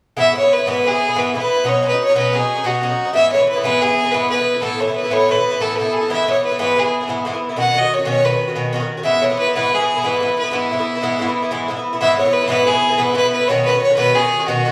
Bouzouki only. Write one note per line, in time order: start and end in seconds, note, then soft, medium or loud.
0.17 0.32 G#2 medium
0.17 0.33 E3 medium
0.17 0.34 B3 medium
0.17 0.34 E4 medium
0.33 0.41 G#2 soft
0.33 0.42 E3 medium
0.33 0.42 B3 medium
0.33 0.41 E4 medium
0.42 0.59 E3 soft
0.42 0.58 B3 soft
0.42 0.57 E4 soft
0.58 0.66 E3 soft
0.58 0.66 B3 soft
0.58 0.66 E4 soft
0.66 0.83 G#2 medium
0.66 0.84 E3 medium
0.66 0.84 B3 medium
0.66 0.85 E4 medium
0.84 0.92 G#2 medium
0.84 0.92 E3 medium
0.84 0.91 B3 medium
0.84 0.90 E4 medium
0.91 1.08 E3 soft
0.91 1.07 B3 soft
0.91 1.07 E4 soft
1.08 1.15 E3 soft
1.08 1.15 B3 soft
1.08 1.15 E4 soft
1.15 1.33 G#2 medium
1.15 1.33 E3 medium
1.15 1.33 B3 medium
1.15 1.34 E4 medium
1.34 1.41 G#2 soft
1.34 1.42 E3 medium
1.34 1.41 B3 medium
1.34 1.40 E4 medium
1.41 1.57 E3 soft
1.41 1.56 B3 soft
1.41 1.55 E4 soft
1.56 1.64 E3 soft
1.56 1.65 B3 soft
1.56 1.64 E4 soft
1.64 1.80 B2 medium
1.64 1.81 F#3 medium
1.64 1.82 C#4 medium
1.64 1.83 D#4 medium
1.82 1.90 B2 soft
1.82 1.91 F#3 medium
1.82 1.91 C#4 medium
1.82 1.91 D#4 soft
1.92 2.08 F#3 soft
1.92 2.08 C#4 soft
1.92 2.07 D#4 soft
2.09 2.15 F#3 soft
2.09 2.15 C#4 soft
2.09 2.15 D#4 soft
2.14 2.31 B2 medium
2.14 2.32 F#3 medium
2.14 2.33 C#4 medium
2.14 2.33 D#4 medium
2.33 2.40 B2 soft
2.33 2.41 F#3 medium
2.33 2.39 C#4 medium
2.33 2.38 D#4 medium
2.39 2.57 F#3 soft
2.39 2.56 C#4 soft
2.39 2.54 D#4 soft
2.55 2.63 F#3 soft
2.55 2.63 C#4 soft
2.55 2.64 D#4 soft
2.64 2.80 B2 medium
2.64 2.82 F#3 medium
2.64 2.82 C#4 medium
2.64 2.83 D#4 medium
2.82 2.90 B2 soft
2.82 2.90 F#3 medium
2.82 2.90 C#4 medium
2.82 2.88 D#4 medium
2.90 3.07 F#3 soft
2.90 3.06 C#4 soft
2.90 3.04 D#4 soft
3.05 3.14 F#3 soft
3.05 3.14 C#4 soft
3.05 3.13 D#4 soft
3.13 3.31 G#2 medium
3.13 3.31 E3 medium
3.13 3.32 B3 medium
3.13 3.32 E4 medium
3.34 3.40 G#2 soft
3.34 3.40 E3 medium
3.34 3.39 B3 medium
3.34 3.38 E4 medium
3.39 3.56 E3 soft
3.39 3.56 B3 soft
3.39 3.54 E4 soft
3.56 3.63 E3 soft
3.56 3.64 B3 soft
3.56 3.63 E4 soft
3.63 3.80 G#2 medium
3.63 3.80 E3 medium
3.63 3.81 B3 medium
3.63 3.82 E4 medium
3.81 3.89 G#2 soft
3.81 3.89 E3 medium
3.81 3.89 B3 medium
3.81 3.87 E4 medium
3.89 4.04 E3 soft
3.89 4.03 B3 soft
3.89 4.03 E4 soft
4.04 4.13 E3 soft
4.04 4.12 B3 soft
4.04 4.12 E4 soft
4.13 4.29 G#2 medium
4.13 4.31 E3 medium
4.13 4.31 B3 medium
4.13 4.31 E4 medium
4.31 4.38 G#2 medium
4.31 4.39 E3 soft
4.31 4.39 B3 medium
4.31 4.38 E4 medium
4.39 4.56 E3 soft
4.39 4.55 B3 soft
4.39 4.53 E4 soft
4.54 4.61 E3 soft
4.54 4.61 B3 soft
4.54 4.62 E4 soft
4.62 4.78 A2 medium
4.62 4.79 E3 medium
4.62 4.80 B3 medium
4.62 4.80 E4 medium
4.79 4.87 A2 soft
4.79 4.88 E3 medium
4.79 4.88 B3 medium
4.79 4.86 E4 medium
4.88 5.05 E3 soft
4.88 5.04 B3 soft
4.88 5.03 E4 soft
5.04 5.10 E3 soft
5.04 5.10 B3 soft
5.04 5.11 E4 medium
5.10 5.27 A2 medium
5.10 5.28 E3 medium
5.10 5.29 B3 medium
5.10 5.29 E4 medium
5.28 5.37 A2 medium
5.28 5.36 E3 medium
5.28 5.35 B3 medium
5.28 5.34 E4 medium
5.35 5.52 E3 soft
5.35 5.51 B3 soft
5.35 5.49 E4 soft
5.51 5.59 E3 soft
5.51 5.60 B3 soft
5.51 5.60 E4 soft
5.60 5.77 A2 medium
5.60 5.78 E3 medium
5.60 5.79 B3 medium
5.60 5.79 E4 medium
5.78 5.86 A2 soft
5.78 5.86 E3 soft
5.78 5.84 B3 medium
5.78 5.83 E4 medium
5.84 6.02 E3 soft
5.84 6.01 B3 soft
5.84 6.00 E4 soft
6.01 6.09 E3 soft
6.01 6.09 B3 soft
6.01 6.10 E4 soft
6.09 6.25 G#2 medium
6.09 6.26 E3 medium
6.09 6.27 B3 medium
6.09 6.27 E4 medium
6.26 6.35 G#2 medium
6.26 6.36 E3 medium
6.26 6.35 B3 medium
6.26 6.33 E4 medium
6.34 6.52 E3 soft
6.34 6.51 B3 soft
6.34 6.50 E4 soft
6.51 6.58 E3 soft
6.51 6.58 B3 soft
6.51 6.59 E4 soft
6.59 6.75 G#2 medium
6.59 6.76 E3 medium
6.59 6.77 B3 medium
6.59 6.77 E4 medium
6.76 6.85 G#2 soft
6.76 6.85 E3 medium
6.76 6.84 B3 medium
6.76 6.83 E4 medium
6.84 7.02 E3 soft
6.84 7.01 B3 soft
6.84 6.99 E4 soft
7.01 7.08 E3 soft
7.01 7.08 B3 soft
7.01 7.09 E4 soft
7.08 7.24 G#2 medium
7.08 7.25 E3 medium
7.08 7.26 B3 medium
7.08 7.26 E4 medium
7.25 7.34 G#2 medium
7.25 7.34 E3 medium
7.25 7.33 B3 medium
7.25 7.32 E4 medium
7.33 7.51 E3 soft
7.33 7.49 B3 medium
7.33 7.48 E4 soft
7.49 7.56 E3 soft
7.49 7.57 B3 soft
7.49 7.58 E4 soft
7.56 7.71 B2 medium
7.56 7.73 D#3 medium
7.56 7.74 C#4 medium
7.56 7.74 F#4 medium
7.73 7.82 B2 medium
7.73 7.82 D#3 medium
7.73 7.81 C#4 soft
7.73 7.79 F#4 medium
7.80 7.99 D#3 soft
7.80 7.98 C#4 soft
7.80 7.97 F#4 soft
7.98 8.05 D#3 soft
7.98 8.06 C#4 soft
7.98 8.06 F#4 soft
8.05 8.22 B2 medium
8.05 8.23 D#3 medium
8.05 8.24 C#4 medium
8.05 8.24 F#4 medium
8.23 8.32 B2 medium
8.23 8.33 D#3 medium
8.23 8.32 C#4 medium
8.23 8.30 F#4 medium
8.32 8.48 D#3 soft
8.32 8.48 C#4 soft
8.32 8.46 F#4 soft
8.48 8.55 D#3 soft
8.48 8.55 C#4 soft
8.48 8.55 F#4 soft
8.55 8.71 B2 medium
8.55 8.73 D#3 medium
8.55 8.73 C#4 medium
8.55 8.74 F#4 medium
8.73 8.81 B2 medium
8.73 8.81 D#3 medium
8.73 8.80 C#4 medium
8.73 8.79 F#4 medium
8.80 8.98 D#3 soft
8.80 8.97 C#4 soft
8.80 8.96 F#4 medium
8.97 9.04 D#3 soft
8.97 9.05 C#4 soft
8.97 9.05 F#4 soft
9.03 9.21 G#2 medium
9.03 9.22 E3 medium
9.03 9.23 B3 medium
9.03 9.23 E4 medium
9.22 9.31 G#2 medium
9.22 9.31 E3 medium
9.22 9.29 B3 medium
9.22 9.29 E4 medium
9.30 9.48 E3 soft
9.30 9.46 B3 soft
9.30 9.45 E4 soft
9.46 9.55 E3 soft
9.46 9.55 B3 soft
9.46 9.55 E4 soft
9.55 9.71 G#2 medium
9.55 9.72 E3 medium
9.55 9.73 B3 medium
9.55 9.74 E4 medium
9.72 9.80 G#2 medium
9.72 9.81 E3 medium
9.72 9.80 B3 medium
9.72 9.78 E4 medium
9.80 9.97 E3 soft
9.80 9.96 B3 soft
9.80 9.94 E4 soft
9.95 10.03 E3 soft
9.95 10.03 B3 soft
9.95 10.04 E4 medium
10.03 10.19 G#2 medium
10.03 10.21 E3 medium
10.03 10.22 B3 medium
10.03 10.22 E4 medium
10.20 10.29 G#2 medium
10.20 10.28 E3 medium
10.20 10.27 B3 medium
10.20 10.26 E4 medium
10.28 10.44 E3 soft
10.28 10.42 B3 soft
10.28 10.42 E4 soft
10.43 10.52 E3 soft
10.43 10.52 B3 soft
10.43 10.52 E4 soft
10.51 10.70 G#2 medium
10.51 10.71 E3 medium
10.51 10.71 B3 medium
10.51 10.71 E4 medium
10.71 10.79 G#2 medium
10.71 10.79 E3 soft
10.71 10.79 B3 medium
10.71 10.78 E4 medium
10.79 10.96 E3 soft
10.79 10.95 B3 soft
10.79 10.94 E4 medium
10.95 11.01 E3 soft
10.95 11.02 B3 soft
10.95 11.02 E4 medium
11.02 11.18 G#2 medium
11.02 11.19 E3 medium
11.02 11.20 B3 medium
11.02 11.21 E4 medium
11.19 11.28 G#2 medium
11.19 11.28 E3 medium
11.19 11.27 B3 medium
11.19 11.26 E4 medium
11.27 11.43 E3 soft
11.27 11.42 B3 soft
11.27 11.41 E4 soft
11.42 11.50 E3 soft
11.42 11.51 B3 soft
11.42 11.51 E4 soft
11.51 11.67 G#2 medium
11.51 11.68 E3 medium
11.51 11.69 B3 medium
11.51 11.70 E4 medium
11.68 11.77 G#2 medium
11.68 11.77 E3 medium
11.68 11.77 B3 medium
11.68 11.75 E4 medium
11.77 11.93 E3 soft
11.77 11.92 B3 soft
11.77 11.92 E4 soft
11.93 12.00 E3 soft
11.93 12.01 B3 soft
11.93 12.01 E4 soft
12.01 12.17 G#2 medium
12.01 12.18 E3 medium
12.01 12.18 B3 medium
12.01 12.19 E4 medium
12.18 12.26 G#2 soft
12.18 12.27 E3 medium
12.18 12.25 B3 medium
12.18 12.24 E4 medium
12.25 12.42 E3 soft
12.25 12.41 B3 soft
12.25 12.40 E4 soft
12.41 12.47 E3 soft
12.41 12.48 B3 soft
12.41 12.49 E4 medium
12.48 12.64 G#2 medium
12.48 12.66 E3 medium
12.48 12.66 B3 medium
12.48 12.67 E4 medium
12.65 12.74 G#2 medium
12.65 12.75 E3 medium
12.65 12.74 B3 medium
12.65 12.72 E4 medium
12.73 12.91 E3 soft
12.73 12.89 B3 soft
12.73 12.88 E4 soft
12.89 12.97 E3 soft
12.89 12.98 B3 soft
12.89 12.98 E4 soft
12.98 13.12 G#2 medium
12.98 13.13 E3 medium
12.98 13.14 B3 medium
12.98 13.14 E4 medium
13.13 13.23 G#2 medium
13.13 13.23 E3 medium
13.13 13.24 B3 medium
13.13 13.23 E4 medium
13.24 13.41 E3 soft
13.24 13.40 B3 soft
13.24 13.39 E4 soft
13.40 13.49 E3 soft
13.40 13.49 B3 soft
13.40 13.48 E4 soft
13.49 13.65 B2 medium
13.49 13.65 D#3 medium
13.49 13.66 C#4 medium
13.49 13.67 F#4 medium
13.66 13.74 B2 soft
13.66 13.74 D#3 medium
13.66 13.74 C#4 medium
13.66 13.73 F#4 soft
13.74 13.90 D#3 soft
13.74 13.90 C#4 soft
13.74 13.89 F#4 soft
13.90 13.96 D#3 soft
13.90 13.96 C#4 soft
13.90 13.97 F#4 medium
13.97 14.13 B2 medium
13.97 14.13 D#3 medium
13.97 14.15 C#4 medium
13.97 14.15 F#4 medium
14.14 14.22 B2 medium
14.14 14.23 D#3 medium
14.14 14.22 C#4 medium
14.14 14.21 F#4 medium
14.22 14.39 D#3 soft
14.22 14.39 C#4 soft
14.22 14.38 F#4 soft
14.39 14.47 D#3 soft
14.39 14.48 C#4 soft
14.39 14.47 F#4 soft
14.48 14.64 B2 medium
14.48 14.65 D#3 medium
14.48 14.65 C#4 medium
14.48 14.65 F#4 medium
14.65 14.72 B2 medium
14.65 14.72 D#3 medium
14.65 14.72 C#4 medium
14.65 14.72 F#4 medium